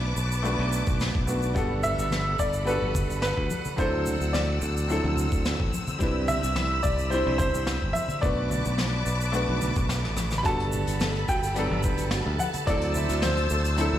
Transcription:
Already playing: B1 A3 B3 D4 F#4 B4 A5 D6
0.17 B1, shaker
0.32 shaker
0.43 A3 B3 D4 F#4 B4, shaker
0.59 B1
0.72 shaker
0.87 B1, kick, shaker
1.00 snare, shaker
1.15 B1, kick
1.27 A3 B3 D4 F#4 B4, shaker
1.42 shaker
1.54 G1 G3 B3 D4 F#4 A4 F#5 B5, kick, shaker
1.83 E5, low conga, shaker
1.99 G1, shaker
2.11 snare, high conga, shaker
2.39 G1 D5, kick, shaker
2.53 shaker
2.65 G3 B3 D4 F#4 A4 B4, shaker
2.82 G1, high conga
2.95 kick, low conga, shaker
3.10 G1, shaker
3.22 B4, snare, shaker
3.37 D2, kick
3.50 high conga, shaker
3.65 low conga, shaker
3.76 D2 F#3 C4 D4 E4 A4 C5 E6, kick, shaker
4.06 low conga, shaker
4.20 D2, shaker
4.33 D5, snare, high conga, shaker
4.62 D2, shaker
4.77 shaker
4.88 F#3 C4 D4 E4 A4, shaker
5.04 D2, high conga
5.17 low conga, shaker
5.32 D2, kick, shaker
5.45 snare, shaker
5.60 A1, kick
5.74 high conga, shaker
5.88 low conga, shaker
5.99 C2 G3 C4 D4 E4 B4 B5, kick, shaker
6.28 E5, low conga, shaker
6.43 C2, shaker
6.56 snare, high conga, shaker
6.83 C2 D5, kick, shaker
6.99 shaker
7.10 G3 C4 D4 E4 C5, shaker
7.27 C2, high conga
7.38 C5, kick, low conga, shaker
7.54 C2, shaker
7.67 snare, shaker
7.82 G1, kick
7.93 E5, high conga, shaker
8.08 low conga, shaker
8.21 B1 A3 B3 D4 F#4 B4 D5 A5 D6, kick, shaker
8.51 low conga, shaker
8.65 B1, shaker
8.78 snare, high conga, shaker
9.06 B1, shaker
9.21 shaker
9.32 A3 B3 D4 F#4 B4, shaker
9.49 B1, high conga
9.62 low conga, shaker
9.76 B1, kick, shaker
9.89 snare, shaker
10.04 A1, cross-stick
10.17 cross-stick, high conga, shaker
10.31 cross-stick, low conga, shaker
10.38 B5
10.43 G1 G3 B3 D4 F#4 A4 A5 B5, kick, closed hi-hat, shaker
10.60 closed hi-hat
10.72 low conga, shaker
10.87 G1, closed hi-hat, shaker
11.00 A4, snare, closed hi-hat, high conga, shaker
11.15 closed hi-hat
11.28 G1 F#4 G5, kick, shaker
11.43 closed hi-hat, shaker
11.54 F#3 G3 B3 D4 A4, closed hi-hat, shaker
11.71 G1, high conga
11.83 B4, kick, low conga, shaker
11.98 G1, closed hi-hat, shaker
12.11 F#4, snare, closed hi-hat, shaker
12.26 D2
12.39 F#5, high conga, shaker
12.53 closed hi-hat, low conga, shaker
12.65 D2 F#3 C4 D4 E4 C5 D5 E6, kick, closed hi-hat, shaker
12.70 A4
12.81 closed hi-hat
12.95 E4, low conga, shaker
13.09 D2, closed hi-hat, shaker
13.22 C5, snare, closed hi-hat, high conga, shaker
13.37 closed hi-hat
13.50 D2 A4, shaker
13.65 closed hi-hat, shaker
13.76 F#3 C4 D4 E4 A4, closed hi-hat, shaker
13.93 D2, high conga

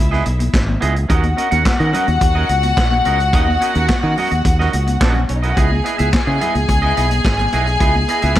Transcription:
Already playing: E4 E5
0.00 C#2
0.11 B3 E4 G#4 D#5, snare
0.25 B1, muted clean electric guitar stroke, closed hi-hat, muted conga
0.39 muted clean electric guitar stroke, closed hi-hat, high conga
0.53 G#1, muted clean electric guitar stroke, kick, snare, clap, muted conga
0.67 muted clean electric guitar stroke, high conga, low conga
0.81 C#2 B3 E4 G#4 D#5, closed hi-hat, muted conga
0.95 muted clean electric guitar stroke, closed hi-hat
1.09 D#2 C#4 F#4 A#4 D#5 F#5, kick, closed hi-hat, muted conga
1.23 closed hi-hat, high conga
1.37 C#4 F#4 A#4 D#5, closed hi-hat, muted conga
1.51 D#2 C#4 F#4 A#4 F#5, closed hi-hat, high conga
1.65 muted clean electric guitar stroke, kick, snare, clap, muted conga, high conga
1.79 D#3 C#4 F#4 A#4 D#5, closed hi-hat
1.93 C#4 F#4 A#4 D#5, closed hi-hat, muted conga, low conga
2.07 D#2, muted clean electric guitar stroke, closed hi-hat, high conga
2.21 D#2, muted clean electric guitar stroke, kick, closed hi-hat, muted conga
2.35 C#4 F#4 A#4 D#5
2.49 C#2, muted clean electric guitar stroke, closed hi-hat, muted conga
2.63 muted clean electric guitar stroke, closed hi-hat, high conga
2.77 A#1, muted clean electric guitar stroke, kick, snare, clap
2.91 muted clean electric guitar stroke, high conga, low conga
3.05 C#2 C#4 F#4 A#4 D#5, closed hi-hat, muted conga
3.19 muted clean electric guitar stroke, closed hi-hat
3.33 D#2 C#4 F#4 A#4 D#5, kick, closed hi-hat, muted conga
3.47 high conga
3.61 C#4 F#4 A#4 D#5, closed hi-hat
3.74 D#2 C#4 F#4 A#4 F#5, closed hi-hat, high conga
3.89 muted clean electric guitar stroke, kick, snare, clap, muted conga, high conga
4.03 D#3 C#4 F#4 A#4 D#5
4.17 C#4 F#4 A#4 D#5, open hi-hat, low conga
4.31 D#2, muted clean electric guitar stroke, closed hi-hat, high conga
4.45 D#2, muted clean electric guitar stroke, kick, closed hi-hat, muted conga
4.59 C#4 F#4 A#4 D#5, snare
4.73 C#2, muted clean electric guitar stroke, closed hi-hat, muted conga
4.87 muted clean electric guitar stroke, closed hi-hat, high conga
5.00 A#1 C#4 F#4 A#4 D#5, kick, snare, clap
5.15 muted clean electric guitar stroke, high conga, low conga
5.29 B1 C#4 C#5, muted clean electric guitar stroke, closed hi-hat
5.36 D#4 D#5
5.43 C#4 E4 F#4 A#4 D#5 E5, closed hi-hat
5.50 F#4 F#5
5.56 C#2 B3 E4 G#4 D#5 G#5, kick, closed hi-hat
5.71 high conga
5.84 B3 E4 G#4 D#5, closed hi-hat, muted conga
5.98 C#2 B3 E4 G#4 E5, closed hi-hat, high conga
6.12 muted clean electric guitar stroke, kick, snare, clap, high conga
6.26 C#3 B3 E4 G#4 D#5
6.40 B3 E4 G#4 D#5, closed hi-hat, low conga
6.55 C#2, muted clean electric guitar stroke, closed hi-hat, high conga
6.68 C#2, muted clean electric guitar stroke, kick, closed hi-hat
6.82 B3 E4 G#4 D#5
6.96 B1 B3 E4 G#4 D#5, closed hi-hat, muted conga
7.11 muted clean electric guitar stroke, closed hi-hat, high conga
7.25 G#1, muted clean electric guitar stroke, kick, snare, clap
7.39 muted clean electric guitar stroke, closed hi-hat, high conga, low conga
7.52 B1 B3 E4 G#4 D#5, closed hi-hat, muted conga
7.66 muted clean electric guitar stroke, closed hi-hat
7.80 C#2 B3 E4 G#4 D#5, kick, closed hi-hat, muted conga
7.94 high conga
8.08 B3 E4 G#4 D#5, closed hi-hat
8.22 C#2 B3 E4 G#4 E5, closed hi-hat, high conga
8.36 muted clean electric guitar stroke, kick, clap

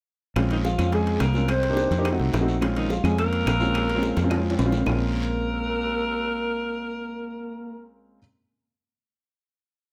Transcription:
0.36 A#1 G#3 C4 C#4 F4, high bongo, high timbale, long guiro, claves
0.50 D#3 D#4, high bongo, high timbale
0.65 F3 F4, high bongo, short guiro
0.78 F2 G#3 C4 C#4 F4, high bongo, high timbale, short guiro, claves
0.92 G#3 G#4, high bongo, high timbale, long guiro
1.07 high timbale
1.20 C2 A#3 A#4, high bongo, low bongo, high timbale, low timbale, short guiro, claves
1.34 G#3 C4 C#4 F4, high bongo, short guiro
1.48 C4 C5, high bongo, high timbale, long guiro, claves
1.63 high bongo, high timbale
1.70 A#3 D4 D#4 G4
1.77 high bongo, short guiro
1.91 F2, high bongo, high timbale, short guiro
1.98 A#3 D4 D#4 G4
2.05 high bongo, high timbale, long guiro, claves
2.12 A3 C4 D#4 F#4
2.19 C2, high bongo
2.33 A#1, high bongo, low bongo, high timbale, low timbale, short guiro
2.40 A3 C4 D#4 F#4
2.48 short guiro
2.61 G#3 C4 C#4 F4, high bongo, high timbale, long guiro, claves
2.76 D#3 D#4, high bongo, high timbale
2.90 F3 F4, high bongo, short guiro
3.03 F2 G#3 C4 C#4 F4 G#4, high bongo, high timbale, short guiro, claves
3.17 A#3 A#4, high bongo, high timbale, long guiro
3.33 high timbale
3.46 A#1, high bongo, low bongo, high timbale, low timbale, short guiro, claves
3.60 G#3 C4 C#4 F4, high bongo, short guiro
3.74 high bongo, high timbale, long guiro, claves
3.89 high bongo, high timbale
3.95 G#3 C4 C#4 F4
4.02 high bongo, short guiro
4.16 F2, high bongo, high timbale, short guiro
4.24 G#3 C4 C#4 F4
4.30 high bongo, high timbale, long guiro, claves
4.37 G#3 C4 C#4 F4
4.50 high timbale
4.58 A#1, low timbale, short guiro
4.65 G#3 C4 C#4 F4
4.72 low bongo, short guiro
4.77 low timbale
4.85 A#1 G#3 A#3 C4 C#4 F4 A#4, low bongo, low timbale, long guiro, claves

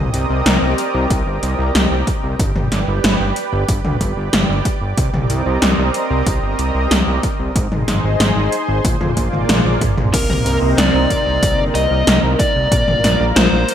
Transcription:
Already playing: C4 G4 A#4 D5 D#5
0.14 C2, closed hi-hat
0.30 C2
0.46 C2, snare, closed hi-hat
0.62 C2
0.78 closed hi-hat
0.94 C2
1.10 C2, kick, closed hi-hat
1.27 G1
1.43 C2, closed hi-hat
1.59 C2
1.75 C2, snare, closed hi-hat
1.91 C2
2.07 kick, closed hi-hat
2.23 C2
2.39 G1 B4 D5, kick, closed hi-hat
2.56 G1, mid tom
2.72 G1, snare, closed hi-hat
2.88 G1
3.04 G1, snare, closed hi-hat
3.20 G1
3.36 closed hi-hat
3.53 G1
3.68 G1, kick, closed hi-hat
3.85 D2, mid tom
4.01 G1, kick, closed hi-hat
4.17 G1
4.33 G1, snare, closed hi-hat
4.49 G1
4.65 kick, closed hi-hat
4.82 G1
4.97 C2 C4 A#4 D#5, kick, closed hi-hat
5.14 C2, mid tom
5.30 C2, closed hi-hat
5.46 C2
5.62 C2, snare, closed hi-hat
5.78 C2
5.94 closed hi-hat
6.10 C2
6.27 C2, kick, closed hi-hat
6.43 G1
6.59 C2, closed hi-hat
6.75 C2
6.91 C2, snare, closed hi-hat
7.07 C2
7.23 kick, closed hi-hat
7.40 C2
7.56 G#1 D#4 G#4 C5, kick, closed hi-hat
7.72 G#1, mid tom
7.88 G#1, snare, closed hi-hat
8.04 G#1
8.20 G#1, snare, closed hi-hat
8.36 G#1
8.52 closed hi-hat
8.69 G#1
8.85 A#1 A#3 F4 D5, kick, closed hi-hat, high tom
9.01 F2, mid tom, high tom
9.17 A#1, kick, closed hi-hat
9.33 G#1, mid tom
9.49 A#1, snare, closed hi-hat, mid tom
9.65 A#1, mid tom
9.81 kick, closed hi-hat, mid tom
9.97 A#1, mid tom
10.14 C2 C3 A#3 C4 D#4 A#4, kick, closed hi-hat, crash
10.30 C2, mid tom
10.46 C2, closed hi-hat
10.62 C2
10.78 C2 D5, snare, closed hi-hat
10.94 C2
11.10 kick, closed hi-hat
11.27 C2
11.43 C2, kick, closed hi-hat
11.59 G1
11.75 C2 D#5, closed hi-hat
11.91 C2
12.07 C2, snare, closed hi-hat
12.23 C2
12.39 D5, kick, closed hi-hat
12.56 C2
12.72 A#1 F4, kick, closed hi-hat
12.88 A#1, mid tom
13.04 A#1, snare, closed hi-hat
13.20 A#1
13.36 A#1 C5, snare, closed hi-hat
13.52 A#1
13.69 closed hi-hat

